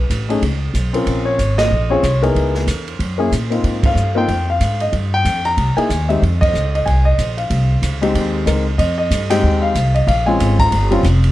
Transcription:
0.00 0.90 B4 medium
0.10 0.41 A1 medium
0.10 kick soft
0.10 hi-hat pedal soft
0.10 ride medium
0.29 0.40 A3 medium
0.29 0.41 C#4 medium
0.29 0.41 D#4 medium
0.29 0.41 G#4 medium
0.29 ride soft
0.42 0.73 C#2 medium
0.42 kick soft
0.42 ride medium
0.74 1.05 B1 medium
0.74 kick soft
0.74 hi-hat pedal medium
0.74 ride medium
0.93 1.36 C4 medium
0.93 1.36 C#4 medium
0.93 1.37 F4 medium
0.93 1.37 A#4 medium
0.93 ride soft
1.06 1.38 A#1 medium
1.06 kick soft
1.06 ride medium
1.25 1.56 C#5 medium
1.39 1.70 G#1 medium
1.39 kick soft
1.39 hi-hat pedal soft
1.39 ride medium
1.58 1.91 D#5 medium
1.58 snare medium
1.58 ride medium
1.71 2.02 A#1 medium
1.90 2.02 C4 medium
1.90 2.02 C#4 medium
1.90 2.02 F4 medium
1.90 2.02 G#4 medium
1.90 2.24 C#5 medium
2.03 2.34 C2 medium
2.03 kick soft
2.03 hi-hat pedal soft
2.03 ride soft
2.22 2.65 B3 medium
2.22 2.65 D#4 medium
2.22 2.65 E4 medium
2.22 2.65 G#4 medium
2.22 3.47 A#4 medium
2.22 ride soft
2.35 2.66 C#2 medium
2.35 kick soft
2.35 ride soft
2.55 snare soft
2.67 2.98 E2 medium
2.67 kick soft
2.67 hi-hat pedal medium
2.67 ride medium
2.88 ride soft
2.99 3.31 F#2 medium
2.99 kick soft
2.99 ride medium
3.18 3.30 A#3 medium
3.18 3.30 C#4 medium
3.18 3.31 E4 medium
3.18 3.31 G#4 medium
3.32 3.63 A#2 medium
3.32 kick soft
3.32 hi-hat pedal medium
3.32 ride soft
3.50 3.93 A#3 medium
3.50 3.94 C4 medium
3.50 3.94 D#4 medium
3.50 3.94 F4 medium
3.50 ride soft
3.64 3.94 G#2 medium
3.64 kick soft
3.64 ride soft
3.83 4.15 F5 medium
3.83 kick medium
3.83 ride medium
3.95 4.27 G2 medium
3.95 hi-hat pedal soft
4.15 4.27 A#3 medium
4.15 4.27 C4 medium
4.15 4.27 D#4 medium
4.15 4.28 F4 medium
4.15 4.47 G5 medium
4.28 4.59 F2 medium
4.28 kick soft
4.28 ride soft
4.50 4.82 F5 medium
4.60 4.92 G#2 medium
4.60 kick soft
4.60 hi-hat pedal soft
4.60 ride medium
4.80 4.93 D#5 medium
4.80 ride soft
4.92 5.24 G2 medium
4.92 kick soft
4.92 ride soft
5.14 5.46 G5 loud
5.25 5.56 F2 medium
5.25 kick soft
5.25 hi-hat pedal soft
5.25 ride medium
5.45 5.78 A#5 medium
5.45 ride soft
5.57 5.76 C2 medium
5.57 kick soft
5.57 ride medium
5.77 5.88 A#3 medium
5.77 5.88 D#4 medium
5.77 5.89 E4 medium
5.77 5.89 G#4 medium
5.77 6.07 G#5 medium
5.77 muted upright bass stroke soft
5.77 ride soft
5.90 6.21 D#2 medium
5.90 kick soft
5.90 hi-hat pedal medium
5.90 ride medium
6.09 6.20 G#3 medium
6.09 6.21 C4 medium
6.09 6.21 D#4 medium
6.09 6.21 G4 medium
6.09 6.21 E5 medium
6.09 ride soft
6.22 6.53 F2 medium
6.22 kick soft
6.22 ride soft
6.41 6.71 D#5 loud
6.41 kick medium
6.41 ride medium
6.54 6.85 C#2 medium
6.54 hi-hat pedal soft
6.75 6.85 D#5 medium
6.75 ride soft
6.86 7.17 C2 medium
6.86 7.04 G#5 medium
6.86 kick soft
6.86 ride medium
7.05 7.39 D#5 medium
7.18 7.50 A#1 medium
7.18 kick soft
7.18 hi-hat pedal soft
7.18 ride medium
7.37 8.43 F5 medium
7.37 ride soft
7.50 7.82 C2 medium
7.50 kick soft
7.50 ride medium
7.82 8.14 C#2 medium
7.82 kick soft
7.82 hi-hat pedal medium
7.82 ride medium
8.02 8.44 G#3 medium
8.02 8.44 C4 medium
8.02 8.45 D#4 medium
8.02 8.45 G4 medium
8.02 ride soft
8.14 8.45 D#2 medium
8.14 kick soft
8.14 ride medium
8.46 8.78 C#2 medium
8.46 8.64 G#3 medium
8.46 8.64 C4 soft
8.46 8.64 D#4 medium
8.46 8.65 A#4 medium
8.46 kick soft
8.46 hi-hat pedal medium
8.46 ride medium
8.78 9.10 F2 medium
8.78 8.97 D#5 medium
8.78 kick soft
8.78 ride medium
8.98 9.28 D#5 medium
9.11 9.42 G2 medium
9.11 kick soft
9.11 hi-hat pedal medium
9.11 ride medium
9.30 9.73 G#3 medium
9.30 9.73 C4 medium
9.30 9.73 D#4 medium
9.30 9.73 G4 medium
9.30 9.61 G5 medium
9.30 snare soft
9.30 ride medium
9.43 9.75 D#2 medium
9.43 kick soft
9.62 9.96 F5 medium
9.75 10.07 C2 medium
9.75 kick soft
9.75 hi-hat pedal medium
9.75 ride medium
9.95 10.07 D#5 medium
9.95 ride soft
10.07 10.39 A#1 medium
10.07 10.26 F5 medium
10.07 kick soft
10.07 ride medium
10.26 10.69 G#3 medium
10.26 10.70 C4 medium
10.26 10.70 C#4 medium
10.26 10.70 F4 medium
10.26 10.60 G#5 medium
10.39 10.71 G#1 medium
10.39 kick soft
10.39 hi-hat pedal soft
10.39 ride medium
10.59 11.01 A#5 loud
10.59 kick medium
10.59 ride soft
10.72 11.03 G1 medium
10.72 kick soft
10.72 ride medium
10.91 11.03 G3 medium
10.91 11.03 C4 medium
10.91 11.03 C#4 medium
10.91 11.03 F4 medium
10.91 ride soft
11.03 11.32 F1 medium
11.03 kick soft
11.03 hi-hat pedal soft
11.03 ride medium
11.24 ride soft

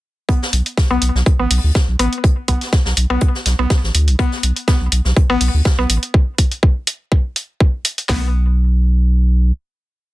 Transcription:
0.29 0.34 B3 medium
0.29 kick loud
0.29 closed hi-hat medium
0.42 snare soft
0.53 0.62 B1 medium
0.53 closed hi-hat medium
0.53 open hi-hat medium
0.66 open hi-hat soft
0.77 kick loud
0.77 snare loud
0.77 closed hi-hat medium
0.91 0.98 B1 medium
0.91 0.95 B3 medium
1.02 1.11 B1 medium
1.02 closed hi-hat medium
1.02 open hi-hat medium
1.15 1.22 B1 medium
1.15 snare soft
1.26 kick loud
1.26 closed hi-hat medium
1.39 1.47 A1 medium
1.39 1.44 B3 medium
1.51 1.59 B1 loud
1.51 open hi-hat medium
1.64 1.71 D2 medium
1.75 kick loud
1.75 snare loud
1.75 closed hi-hat medium
1.88 1.96 B1 medium
1.99 2.08 A1 medium
1.99 2.05 B3 medium
1.99 closed hi-hat medium
1.99 open hi-hat medium
2.13 open hi-hat soft
2.24 kick loud
2.24 closed hi-hat medium
2.48 2.57 B1 medium
2.48 2.54 B3 medium
2.48 kick medium
2.48 closed hi-hat medium
2.48 open hi-hat medium
2.61 snare soft
2.61 open hi-hat soft
2.73 kick loud
2.73 snare loud
2.73 closed hi-hat medium
2.85 2.93 B1 loud
2.85 snare medium
2.97 3.06 B1 medium
2.97 closed hi-hat medium
2.97 open hi-hat medium
3.10 3.18 B1 medium
3.10 3.15 B3 loud
3.21 kick loud
3.21 closed hi-hat medium
3.35 snare soft
3.46 3.54 B1 medium
3.46 snare soft
3.46 closed hi-hat medium
3.46 open hi-hat medium
3.59 3.66 B1 loud
3.59 3.64 B3 medium
3.70 kick loud
3.70 snare loud
3.70 closed hi-hat medium
3.83 3.91 A1 medium
3.83 snare soft
3.94 4.09 D2 loud
3.94 closed hi-hat medium
3.94 open hi-hat medium
4.08 4.15 B1 loud
4.08 open hi-hat soft
4.19 4.25 B3 loud
4.19 kick loud
4.19 closed hi-hat medium
4.32 snare soft
4.43 4.52 B1 medium
4.43 closed hi-hat medium
4.43 open hi-hat medium
4.56 open hi-hat soft
4.68 4.73 B3 medium
4.68 kick loud
4.68 snare loud
4.68 closed hi-hat medium
4.81 4.88 B1 medium
4.92 5.01 B1 medium
4.92 closed hi-hat medium
4.92 open hi-hat medium
5.05 5.13 B1 medium
5.05 snare soft
5.16 kick loud
5.16 closed hi-hat medium
5.30 5.37 A1 medium
5.30 5.34 B3 loud
5.41 5.49 B1 loud
5.41 open hi-hat medium
5.54 5.61 D2 medium
5.65 kick loud
5.65 snare loud
5.65 closed hi-hat medium
5.78 5.86 B1 loud
5.78 5.83 B3 medium
5.90 5.98 A1 medium
5.90 closed hi-hat medium
5.90 open hi-hat medium
6.03 open hi-hat soft
6.14 kick loud
6.38 kick medium
6.38 open hi-hat medium
6.51 open hi-hat soft
6.63 kick loud
6.87 open hi-hat medium
7.12 kick loud
7.36 open hi-hat medium
7.60 kick loud
7.85 open hi-hat medium
7.98 open hi-hat soft
8.09 9.52 B1 loud
8.09 8.32 B3 medium
8.09 kick loud
8.09 snare loud
8.09 open hi-hat medium

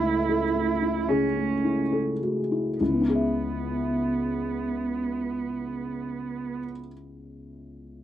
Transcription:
0.00 2.76 C#2 soft
0.00 0.17 A3 soft
0.00 1.10 E4 medium
0.00 0.44 E4 soft
0.00 0.27 A4 medium
0.29 0.71 A4 soft
0.56 0.98 A3 soft
0.82 1.25 E4 soft
1.09 1.53 C#3 soft
1.09 1.93 C#4 soft
1.09 2.18 G#4 soft
1.36 1.81 A3 soft
1.64 2.10 E4 soft
1.92 2.39 A4 soft
2.22 2.68 A3 soft
2.22 2.76 F#4 soft
2.51 2.79 E4 soft
2.80 6.58 C#2 soft
2.80 6.57 B3 soft
2.80 3.00 E4 soft
2.87 6.64 C#3 soft
2.94 6.71 B3 soft
3.01 6.78 E4 soft
3.08 6.85 G#4 soft
3.15 6.92 E5 soft

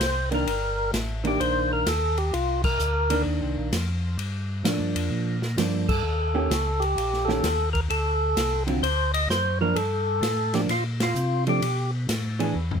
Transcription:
0.00 0.45 C2 medium
0.00 0.29 C5 medium
0.00 snare medium
0.00 hi-hat pedal medium
0.00 ride medium
0.31 0.45 D#3 medium
0.31 0.46 A#3 medium
0.31 0.46 D4 medium
0.31 0.91 A#4 medium
0.31 ride soft
0.46 0.92 G1 medium
0.46 ride medium
0.93 1.38 A1 medium
0.93 snare medium
0.93 hi-hat pedal medium
0.93 ride medium
1.24 1.83 D#3 medium
1.24 1.84 A#3 medium
1.24 1.84 D4 medium
1.24 1.40 G4 medium
1.24 ride soft
1.40 1.85 A#1 medium
1.40 1.72 C5 loud
1.40 ride medium
1.73 1.88 A#4 medium
1.86 2.32 D#2 medium
1.86 2.18 A4 loud
1.86 snare medium
1.86 hi-hat pedal medium
1.86 ride medium
2.18 2.34 G4 medium
2.18 ride soft
2.33 2.78 C2 medium
2.33 2.62 F4 medium
2.33 ride medium
2.64 3.22 A#4 loud
2.64 kick medium
2.64 crash medium
2.79 3.25 D2 medium
2.79 hi-hat pedal medium
3.10 3.69 D#3 medium
3.10 3.69 A#3 medium
3.10 3.70 D4 medium
3.10 ride medium
3.26 3.41 D#2 medium
3.42 3.57 C2 medium
3.58 3.72 A#1 medium
3.73 4.18 F2 medium
3.73 snare medium
3.73 hi-hat pedal medium
3.73 ride medium
4.18 4.63 G2 medium
4.18 ride medium
4.64 4.80 A2 medium
4.64 5.36 F3 medium
4.64 5.36 A#3 medium
4.64 5.37 D4 medium
4.64 snare medium
4.64 hi-hat pedal medium
4.64 ride medium
4.80 4.96 G2 medium
4.95 5.10 F2 medium
4.95 ride medium
5.11 5.56 A#2 medium
5.42 snare medium
5.57 6.03 G2 medium
5.57 5.85 F3 medium
5.57 5.86 A#3 medium
5.57 5.86 D4 medium
5.57 snare medium
5.57 hi-hat pedal medium
5.57 ride medium
5.89 6.84 A4 medium
5.89 kick medium
5.89 crash medium
6.03 6.49 D#2 medium
6.34 6.49 D#3 medium
6.34 6.49 A#3 medium
6.34 6.49 C#4 medium
6.34 6.50 G4 medium
6.50 6.96 C#2 medium
6.50 snare medium
6.50 hi-hat pedal medium
6.50 ride medium
6.80 7.29 G4 medium
6.80 ride soft
6.97 7.42 A#1 medium
6.97 ride medium
7.13 snare soft
7.25 7.42 D#3 medium
7.25 7.43 A#3 medium
7.25 7.70 A4 loud
7.29 7.43 C#4 medium
7.29 7.43 G4 medium
7.29 snare soft
7.43 7.89 D#2 medium
7.43 snare medium
7.43 hi-hat pedal medium
7.43 ride medium
7.73 7.81 A#4 medium
7.73 kick medium
7.73 ride soft
7.90 8.35 D2 medium
7.90 8.63 A4 medium
7.90 ride medium
8.36 8.82 C2 medium
8.36 snare medium
8.36 hi-hat pedal medium
8.36 ride medium
8.67 8.81 D3 medium
8.67 8.82 F#3 medium
8.67 8.82 C4 medium
8.67 8.82 F4 medium
8.67 ride soft
8.82 9.28 D2 medium
8.82 9.12 C5 loud
8.82 ride medium
9.14 9.29 D#5 loud
9.14 ride medium
9.29 9.74 F#2 medium
9.29 9.59 C5 loud
9.29 snare medium
9.29 hi-hat pedal medium
9.61 9.75 F3 medium
9.61 9.75 A#3 medium
9.61 9.76 D4 medium
9.61 9.77 A#4 medium
9.76 10.21 G2 medium
9.76 10.55 A4 medium
9.76 ride medium
10.21 10.67 A2 medium
10.21 snare medium
10.21 hi-hat pedal medium
10.21 ride medium
10.54 10.68 F3 medium
10.54 10.68 A#3 medium
10.54 10.68 D4 medium
10.54 10.61 G4 medium
10.54 snare soft
10.54 ride medium
10.69 11.14 A#2 medium
10.69 10.84 F4 medium
10.69 snare soft
10.69 ride medium
11.00 11.45 F4 medium
11.00 snare medium
11.00 ride medium
11.15 11.60 C3 medium
11.15 hi-hat pedal medium
11.47 11.61 F3 medium
11.47 11.61 A3 medium
11.47 11.61 D4 medium
11.47 11.91 G4 medium
11.47 ride soft
11.62 12.07 B2 medium
11.62 ride medium
12.09 12.54 A2 medium
12.09 snare medium
12.09 hi-hat pedal medium
12.09 ride medium
12.39 12.53 E3 medium
12.39 12.54 B3 medium
12.39 12.54 D4 medium
12.39 12.54 G#4 medium
12.39 ride medium
12.55 12.80 E2 medium
12.71 floor tom medium

